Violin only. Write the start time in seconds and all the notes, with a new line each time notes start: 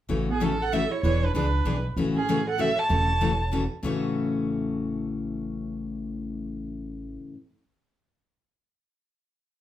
0.31 G#4
0.44 A4
0.62 F#5
0.73 E5
0.92 C#5
1.04 C#5
1.25 B4
1.35 B4
2.16 G#4
2.50 F#5
2.60 E5
2.79 A5